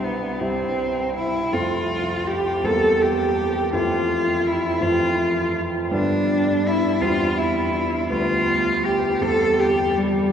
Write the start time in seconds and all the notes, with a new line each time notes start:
Already playing: C2 G3 E4 G4
0.03 B3
0.39 C2 G3 C4 E4 G4
1.15 E4
1.53 F2 A3 C4 F4
2.27 G4
2.63 E2 G3 A#3 C4 A4
3.01 G4
3.73 F2 E3 A3 C4 F4
4.46 E4
4.81 F2 E3 A3 C4 F4
5.91 G2 D3 G3 B3 D4
6.66 E4
7.01 E2 G3 C4 F4
7.37 E4
8.09 D2 G3 B3 F4
8.85 G4
9.21 E2 G3 C4 A4
9.59 G4
9.97 G3